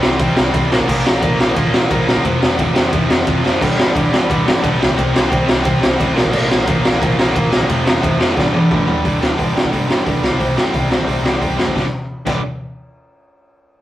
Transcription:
0.02 C2 C3 G3 C4, snare
0.19 C2 C3 G3 C4, kick, ride
0.37 C2 C3 G3 C4, snare
0.54 C2 C3 G3 C4, kick, ride
0.72 A#1 A#2 F3 A#3, snare
0.80 kick
0.88 A#1 A#2 F3 A#3, kick, crash
1.05 A#1 A#2 F3 A#3, snare
1.21 A#1 A#2 F3 A#3, kick, ride
1.39 A#1 A#2 F3 A#3, snare
1.56 A#1 A#2 F3 A#3, kick, ride
1.72 A#1 A#2 F3 A#3, snare
1.91 A#1 A#2 F3 A#3, kick, ride
2.07 A#1 A#2 F3 A#3, snare
2.16 kick
2.24 F1 F2 C3 F3, kick, ride
2.41 F1 F2 C3 F3, snare
2.58 F1 F2 C3 F3, kick, ride
2.74 F1 F2 C3 F3, snare
2.91 F1 F2 C3 F3, kick, ride
3.08 F1 F2 C3 F3, snare
3.26 F1 F2 C3 F3, kick, ride
3.43 F1 F2 C3 F3, snare
3.60 G1 G2 D3 G3, kick, crash
3.78 G1 G2 D3 G3, snare
3.94 G1 G2 D3 G3, kick, ride
4.11 G1 G2 D3 G3, snare
4.29 G1 G2 D3 G3, kick, ride
4.46 G1 G2 D3 G3, snare
4.62 A#1 G2 D3 G3, kick, ride
4.79 C2 C3 G3 C4, snare
4.90 kick
4.97 C2 C3 G3 C4, kick, ride
5.13 C2 C3 G3 C4, snare
5.29 C2 C3 G3 C4, kick, ride
5.46 C3 G3 C4, snare
5.50 C2
5.63 C2 C3 G3 C4, kick, ride
5.81 C2 C3 G3 C4, snare
5.99 C2 C3 G3 C4, kick, ride
6.15 A#1 A#2 F3 A#3, snare
6.25 kick
6.32 A#1 A#2 F3 A#3, kick, crash
6.49 A#1 A#2 F3 A#3, snare
6.66 A#1 A#2 F3 A#3, kick, ride
6.82 A#1 A#2 F3 A#3, snare
7.00 A#1 A#2 F3 A#3, kick, ride
7.18 A#1 A#2 F3 A#3, snare
7.35 A#1 A#2 F3 A#3, kick, ride
7.51 A#1 A#2 F3 A#3, snare
7.61 kick
7.68 F1 F2 C3 F3, kick, ride
7.85 F1 F2 C3 F3, snare
8.01 F1 F2 C3 F3, kick, ride
8.19 F1 F2 C3 F3, snare
8.36 G1 G2 D3 G3, kick, snare
8.53 G1 G2 D3 G3, high tom
8.70 G1 G2 D3 G3, kick, mid tom
8.86 G1 G2 D3 G3, floor tom
9.04 G1 G2 D3 G3, kick, open hi-hat
9.20 D2 G2 D3 G3, snare
9.37 G1 G2 D3 G3, kick, open hi-hat
9.53 G1 G2 D3 G3, snare
9.65 kick
9.70 G1 G2 D3 G3, kick, open hi-hat
9.87 G1 G2 D3 G3, snare
10.05 G1 G2 D3 G3, kick, open hi-hat
10.22 C2 C3 G3 C4, snare
10.32 kick
10.39 C2 C3 G3 C4, kick, open hi-hat
10.56 G1 C3 G3 C4, snare
10.73 C2 C3 G3 C4, kick, open hi-hat
10.89 C2 C3 G3 C4, snare
11.00 kick
11.06 C2 C3 G3 C4, kick, open hi-hat
11.23 C2 C3 G3 C4, snare
11.40 C2 C3 G3 C4, kick, open hi-hat
11.57 F1 C3 G3 C4, snare
11.67 kick
11.75 G1 G2 D3 G3, kick, snare
12.26 G1 G2 D3 G3, kick, crash

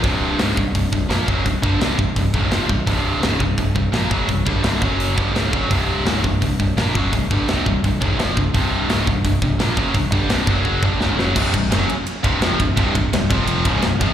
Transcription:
0.03 C1 C2 G2 C3, kick, open hi-hat
0.38 C#1 C#2 G#2 C#3, snare, open hi-hat
0.57 C1 C2 G2, kick
0.75 C1 C2 G2, kick, open hi-hat
0.92 C1 C2 G2, kick
1.09 A#1 A#2 F3 A#3, snare, open hi-hat
1.27 F#1 F#2 C#3 F#3, kick
1.45 C1 C2 G2, kick, open hi-hat
1.62 G1 G2 D3 G3, kick
1.80 C1 C2 G2 C3, snare, open hi-hat
1.98 C1 C2 G2, kick
2.16 C1 C2 G2, kick, open hi-hat
2.33 C#1 C#2 G#2 C#3, kick
2.50 F1 F2 C3 F3, snare, open hi-hat
2.69 C1 C2 G2, kick
2.87 C1 C2 G2 C3, kick, open hi-hat
3.22 C#1 C#2 G#2 C#3, snare, open hi-hat
3.40 C1 C2 G2, kick
3.58 C1 C2 G2, kick, open hi-hat
3.75 C1 C2 G2, kick
3.92 A#1 A#2 F3 A#3, snare, open hi-hat
4.10 F#1 F#2 C#3 F#3, kick
4.27 C1 C2 G2, kick, open hi-hat
4.45 G1 G2 D3 G3, kick
4.62 C1 C2 G2 C3, snare, open hi-hat
4.80 F#1 F#2 C#3 F#3, kick
5.00 open hi-hat
5.16 G1 G2 D3 G3, kick
5.33 C#1 C#2 G#2 C#3, snare, open hi-hat
5.51 F#1 F#2 C#3 F#3, kick
5.68 C1 C2 G2 C3, kick, open hi-hat
6.05 C#1 C#2 G#2 C#3, snare, open hi-hat
6.24 C1 C2 G2, kick
6.41 C1 C2 G2, kick, open hi-hat
6.59 C1 C2 G2, kick
6.77 A#1 A#2 F3 A#3, snare, open hi-hat
6.95 F#1 F#2 C#3 F#3, kick
7.13 C1 C2 G2, kick, open hi-hat
7.31 G1 G2 D3 G3, kick
7.48 C1 C2 G2 C3, snare, open hi-hat
7.66 C1 C2 G2, kick
7.84 C1 C2 G2, kick, open hi-hat
8.00 C#1 C#2 G#2 C#3, kick
8.18 F1 F2 C3 F3, snare, open hi-hat
8.37 C1 C2 G2, kick
8.54 C1 C2 G2 C3, kick, open hi-hat
8.88 C#1 C#2 G#2 C#3, snare, open hi-hat
9.07 C1 C2 G2, kick
9.25 C1 C2 G2, kick, open hi-hat
9.42 C1 C2 G2, kick
9.59 A#1 A#2 F3 A#3, snare, open hi-hat
9.76 F#1 F#2 C#3 F#3, kick
9.94 C1 C2 G2, kick, open hi-hat
10.12 G1 G2 D3 G3, kick
10.29 C1 C2 G2 C3, snare, open hi-hat
10.47 F#1 F#2 C#3 F#3, kick
10.65 kick
10.82 G1 G2 D3 G3, kick
10.99 C#1 C#2 G#2 C#3, snare
11.17 F#1 F#2 C#3 F#3, snare
11.35 C1 C2 G2 C3, kick, crash
11.53 C1 C2 G2, kick, ride
11.70 F#1 F#2 C#3 F#3, snare, ride
11.88 muted picked electric bass stroke, muted distorted electric guitar stroke, ride
12.07 ride
12.23 C1 C2 G2 C3, kick, ride
12.41 F1 F2 C3 F3, snare, ride
12.60 C1 C2 G2, kick, ride
12.77 C1 C2 G2 C3, kick, ride
12.95 C1 C2 G2, kick, ride
13.13 C1 C2 G2, snare, ride
13.30 F1 F2 C3 F3, kick, ride
13.47 ride
13.65 C#1 C#2 G#2 C#3, kick, ride
13.82 C1 C2 G2, snare, ride
14.00 F1 F2 C3 F3, kick, ride

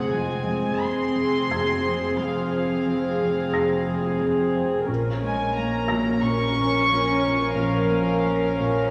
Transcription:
Already playing: F1 F#3 C4 G#4 F#5 F#6, impact
0.12 F3 G#3 G#5
0.47 F2
0.81 F2 C4 C6
1.16 F2
1.50 F2 G#6
1.85 F2
2.18 F2 F3 F5
2.53 F3
2.86 F3
3.19 F2
3.53 F2 A#6
3.87 F2
4.21 F2
4.54 F2
4.88 A#1 A#2 C#4 A#4
5.22 G#3 A#3 G#5
5.56 A#3 A#5
5.88 A#2 A#5 A#6
6.23 A#2 C#4 C#6
6.57 A#2
6.91 A#2
7.26 A#2
7.57 A#2 F3 F5
7.91 A#3
8.25 A#3
8.59 A#2

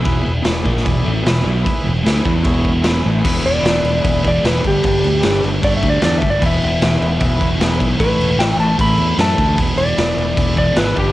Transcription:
0.02 E1 E2 B2 E3 E4 G#4 B4, kick, crash
0.22 E2 B2
0.26 E1
0.43 E1 E2 B2 E4 G#4 D5, snare, crash
0.64 A#1 A#2 F3 A#3, kick
0.77 snare
0.81 E2 B2 E4 G#4 D5
0.86 E1, kick, crash
1.02 A1 A2 E3 A3
1.23 E1 E2 B2 E4 G#4 B4, crash
1.27 snare
1.42 B1 B2 F#3 B3
1.62 E4 G#4 B4, muted distorted electric guitar stroke, kick
1.67 crash
1.84 E1 E2 B2
2.03 D2 D3 A3 D4 E4 G#4 B4, snare, crash
2.24 E2 E3 B3 E4, kick
2.43 E1 E2 B2 E3 E4 G#4 C#5, kick, crash
2.65 kick
2.81 E4 G#4 B4, snare, crash
3.03 A1 A2 E3 A3
3.20 E2 E4 G#4 B4
3.25 E1 B2 E3, kick, crash
3.44 E1 D5, crash
3.59 E1 E4 G#4 B4
3.65 snare, crash
3.83 E1, crash
4.00 E4 G#4 B4
4.04 E1, kick, crash
4.23 B2 E3, kick, crash
4.28 E2 D5
4.43 E1 E2 B2 E4 G#4 B4, snare, crash
4.49 E3
4.59 D4 G4 B4
4.63 G1 G2 D3, kick, crash
4.67 G3 G4
4.83 G1, kick, crash
5.04 D2, crash
5.20 D4 G4 B4, snare, crash
5.24 G1
5.44 G1, crash
5.61 G1 G2 D3 D4 G4 C#5 D5, kick, crash
5.67 G3
5.77 G3 E5
5.83 D2 G2 D3, kick, crash
5.90 D5
6.02 E2 D4 G4 A4 D5, snare, crash
6.18 E5, kick, crash
6.23 G1
6.30 D5
6.39 E1 E2 B2 E4 G#4 B4, kick, crash
6.44 E3 E5
6.62 E1, crash
6.82 E1 E4 G#4 B4, snare, crash
7.01 E1, crash
7.19 E1 E4 G#4 B4, kick, crash
7.37 B2 E3
7.41 E2, kick, crash
7.58 E1 E2 B2, snare, crash
7.63 E3 E4 G#4 B4
7.80 B1, kick, crash
7.97 A1 A2 E3 B4 C#5, kick, crash
8.02 A3 E4 A4
8.17 E1
8.21 crash
8.37 A1 G5, snare, crash
8.41 E4 A4 B4
8.57 A1 A5, crash
8.79 A1 E4 A4 E5 B5, kick, crash
8.96 E2 E3 A3, crash
9.00 A2
9.16 F#2 A2 E3 E4 A4 E5, snare, crash
9.21 A3 A5
9.38 D2, kick, crash
9.54 E2 B2 E4 G#4 B4
9.58 E1 E3, kick, crash
9.76 E1 D5, crash
9.96 E1 E4 G#4 B4, snare, crash
10.17 E1, crash
10.36 E1 E4 G#4 D5, kick, crash
10.54 B2 E3 D5, kick, crash
10.59 E2
10.74 G#1 E2 B2 G#4 B4, snare, crash
10.79 E3 E4 D5
10.93 G2 D3, kick, crash
10.97 G1 G3 D4 G4 B4

